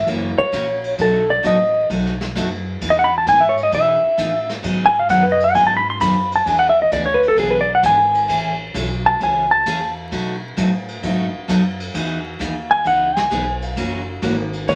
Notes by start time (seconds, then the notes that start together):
0.07 F#1 C#3 E3 A#3 C#4 F#4, kick, ride
0.38 C#5, muted upright bass stroke
0.52 A#1 C#3 E3 A#3 C#4 F#4, kick, hi-hat pedal, ride
0.84 ride
0.98 B1 B2 F#3 A3 D#4 F#4 A4, kick, ride
1.30 D5
1.43 A1 B2 F#3 A3 D#4 F#4 D#5, kick, hi-hat pedal, ride
1.90 B1 B2 F#3 A3 D#4 F#4, kick, ride
2.06 snare
2.21 snare
2.35 F#2 B2 F#3 A3 D#4 F#4, kick, hi-hat pedal, ride
2.81 E2 E3 B3 D#4 G#4, kick, ride
2.90 D#5
2.99 F#5
3.04 B5
3.18 A5
3.26 G#2 E3 B3 D#4 G#4 G#5, kick, hi-hat pedal, ride
3.40 E5
3.49 C#5
3.57 ride
3.63 D#5
3.71 B2 E3 B3 D#4 G#4 E5, kick, ride
4.03 muted upright bass stroke
4.17 A2 E3 B3 D#4 G#4, kick, hi-hat pedal, ride
4.49 snare, ride
4.63 G#2 D#3 F#3 B3 D#4 G#4, kick, ride
4.86 G#5
4.99 F5
5.09 F#2 D#3 F#3 B3 D#4 G#4 F#5, kick, hi-hat pedal, ride
5.23 B4
5.32 D#5
5.40 F#5, ride
5.54 G#2 D#3 F#3 B3 D#4 G#4 G#5, kick, ride
5.67 A5
5.77 B5
5.90 C6
6.00 F#2 D#3 F#3 B3 D#4 G#4 B5, kick, hi-hat pedal, ride
6.32 A5, ride
6.46 E2 E3 B3 D4 G#4 G#5, kick, ride
6.59 F#5
6.69 E5
6.82 D#5
6.91 D2 E3 B3 D4 G#4 D5, kick, hi-hat pedal, ride
7.06 C#5
7.14 B4
7.23 ride
7.28 A4
7.36 B1 E3 B3 D4 G#4, kick, ride
7.51 B4
7.61 D5
7.75 F#5
7.83 G#1 E3 B3 D4 G#4 G#5, kick, hi-hat pedal, ride
8.14 ride
8.28 A1 C#3 E3 A3 C#4 G#4, kick, ride
8.74 B1 C#3 E3 A3 C#4 G#4, kick, hi-hat pedal, ride
9.06 A5
9.20 C#2 C#3 E3 A3 C#4 G#4 G#5, kick, ride
9.51 A5
9.66 E2 C#3 E3 A3 C#4 G#4, kick, hi-hat pedal, ride
10.11 B2 F#3 A3 D#4 F#4, kick, ride
10.57 A2 B2 F#3 A3 D#4 F#4, kick, hi-hat pedal, ride
10.88 ride
11.03 G#2 B2 F#3 A3 D#4 F#4, kick, ride
11.33 muted upright bass stroke
11.48 F#2 B2 F#3 A3 D#4 F#4, kick, hi-hat pedal, ride
11.80 ride
11.94 E2 E3 B3 D#4 G#4, kick, ride
12.39 D#2 E3 B3 D#4 G#4, kick, hi-hat pedal, ride
12.71 G#5
12.84 C#2 E3 B3 D#4 G#4 F#5, kick, ride
13.17 G#5, snare
13.30 B1 E3 B3 D#4 G#4, kick, hi-hat pedal, ride
13.62 ride
13.76 F#1 C#3 E3 A#3 C#4 F#4, kick, ride
14.22 G#1 C#3 E3 A#3 C#4 F#4, kick, hi-hat pedal, ride
14.53 ride
14.68 A#1 C#3 E3 A#3 C#4 F#4 C#5, kick, ride